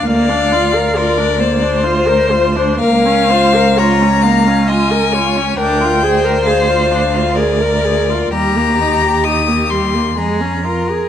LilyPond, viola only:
\new Staff \with { instrumentName = "Viola" } { \time 3/4 \key bes \mixolydian \tempo 4 = 66 bes16 d'16 f'16 bes'16 f'16 d'16 bes16 d'16 f'16 bes'16 f'16 d'16 | \key bes \dorian bes16 des'16 f'16 bes'16 f'16 des'16 bes16 des'16 f'16 bes'16 f'16 des'16 | d'16 f'16 aes'16 bes'16 aes'16 f'16 d'16 f'16 aes'16 bes'16 aes'16 f'16 | g16 bes16 ees'16 g'16 ees'16 bes16 g16 bes16 aes16 des'16 f'16 aes'16 | }